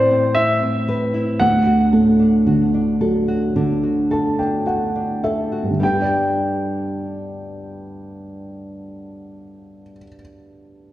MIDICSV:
0, 0, Header, 1, 4, 480
1, 0, Start_track
1, 0, Key_signature, 1, "major"
1, 0, Tempo, 1047120
1, 647, Time_signature, 4, 2, 24, 8
1, 1133, Tempo, 1100917
1, 2093, Tempo, 1162791
1, 4674, End_track
2, 0, Start_track
2, 0, Title_t, "Grand piano"
2, 0, Program_c, 0, 0
2, 0, Note_on_c, 0, 72, 66
2, 158, Note_on_c, 0, 76, 73
2, 174, Note_off_c, 0, 72, 0
2, 640, Note_on_c, 0, 78, 72
2, 656, Note_off_c, 0, 76, 0
2, 2072, Note_off_c, 0, 78, 0
2, 2572, Note_on_c, 0, 79, 54
2, 4303, Note_off_c, 0, 79, 0
2, 4674, End_track
3, 0, Start_track
3, 0, Title_t, "Nylon-string guitar"
3, 0, Program_c, 1, 24
3, 0, Note_on_c, 1, 45, 65
3, 0, Note_on_c, 1, 64, 46
3, 50, Note_on_c, 1, 60, 44
3, 161, Note_off_c, 1, 64, 0
3, 167, Note_on_c, 1, 64, 47
3, 282, Note_off_c, 1, 60, 0
3, 288, Note_on_c, 1, 60, 43
3, 406, Note_on_c, 1, 71, 51
3, 516, Note_off_c, 1, 64, 0
3, 522, Note_on_c, 1, 64, 44
3, 641, Note_on_c, 1, 50, 60
3, 693, Note_off_c, 1, 64, 0
3, 694, Note_off_c, 1, 71, 0
3, 695, Note_off_c, 1, 45, 0
3, 695, Note_off_c, 1, 60, 0
3, 763, Note_on_c, 1, 66, 48
3, 884, Note_on_c, 1, 69, 48
3, 1007, Note_on_c, 1, 62, 46
3, 1126, Note_off_c, 1, 66, 0
3, 1131, Note_on_c, 1, 66, 46
3, 1249, Note_off_c, 1, 62, 0
3, 1250, Note_on_c, 1, 62, 43
3, 1362, Note_off_c, 1, 69, 0
3, 1367, Note_on_c, 1, 69, 47
3, 1481, Note_off_c, 1, 66, 0
3, 1486, Note_on_c, 1, 66, 41
3, 1605, Note_off_c, 1, 50, 0
3, 1607, Note_on_c, 1, 50, 53
3, 1721, Note_off_c, 1, 66, 0
3, 1726, Note_on_c, 1, 66, 39
3, 1842, Note_off_c, 1, 69, 0
3, 1847, Note_on_c, 1, 69, 44
3, 1966, Note_off_c, 1, 62, 0
3, 1968, Note_on_c, 1, 62, 41
3, 2083, Note_off_c, 1, 66, 0
3, 2089, Note_on_c, 1, 66, 41
3, 2208, Note_off_c, 1, 62, 0
3, 2209, Note_on_c, 1, 62, 38
3, 2320, Note_off_c, 1, 69, 0
3, 2325, Note_on_c, 1, 69, 45
3, 2438, Note_off_c, 1, 66, 0
3, 2443, Note_on_c, 1, 66, 38
3, 2556, Note_on_c, 1, 55, 45
3, 2564, Note_off_c, 1, 62, 0
3, 2565, Note_on_c, 1, 62, 50
3, 2570, Note_off_c, 1, 66, 0
3, 2572, Note_on_c, 1, 67, 51
3, 2576, Note_off_c, 1, 69, 0
3, 2578, Note_on_c, 1, 71, 53
3, 3078, Note_off_c, 1, 50, 0
3, 4304, Note_off_c, 1, 55, 0
3, 4313, Note_off_c, 1, 62, 0
3, 4319, Note_off_c, 1, 67, 0
3, 4326, Note_off_c, 1, 71, 0
3, 4674, End_track
4, 0, Start_track
4, 0, Title_t, "Upright piano"
4, 0, Program_c, 2, 0
4, 0, Control_c, 2, 64, 127
4, 0, Note_on_c, 2, 45, 55
4, 0, Note_on_c, 2, 60, 49
4, 0, Note_on_c, 2, 64, 46
4, 388, Note_off_c, 2, 64, 0
4, 628, Note_off_c, 2, 45, 0
4, 628, Note_off_c, 2, 60, 0
4, 645, Note_on_c, 2, 38, 52
4, 652, Control_c, 2, 64, 0
4, 728, Control_c, 2, 64, 127
4, 884, Note_on_c, 2, 45, 38
4, 1130, Note_on_c, 2, 50, 42
4, 1368, Note_on_c, 2, 54, 41
4, 1600, Note_off_c, 2, 50, 0
4, 1607, Note_on_c, 2, 50, 41
4, 1828, Note_off_c, 2, 45, 0
4, 1849, Note_on_c, 2, 81, 49
4, 1962, Note_off_c, 2, 81, 0
4, 1969, Note_on_c, 2, 79, 47
4, 2084, Note_off_c, 2, 79, 0
4, 2091, Note_on_c, 2, 78, 46
4, 2310, Note_off_c, 2, 78, 0
4, 2311, Note_off_c, 2, 54, 0
4, 2326, Note_on_c, 2, 76, 47
4, 2488, Note_on_c, 2, 43, 36
4, 2513, Note_off_c, 2, 50, 0
4, 2519, Note_on_c, 2, 50, 34
4, 2549, Note_off_c, 2, 38, 0
4, 2549, Note_off_c, 2, 76, 0
4, 2552, Note_on_c, 2, 59, 32
4, 2571, Control_c, 2, 64, 0
4, 2584, Note_on_c, 2, 62, 34
4, 2616, Note_on_c, 2, 67, 33
4, 2633, Control_c, 2, 64, 127
4, 2648, Note_on_c, 2, 74, 41
4, 4219, Note_off_c, 2, 43, 0
4, 4250, Note_off_c, 2, 50, 0
4, 4283, Note_off_c, 2, 59, 0
4, 4315, Note_off_c, 2, 62, 0
4, 4347, Note_off_c, 2, 67, 0
4, 4379, Note_off_c, 2, 74, 0
4, 4674, End_track
0, 0, End_of_file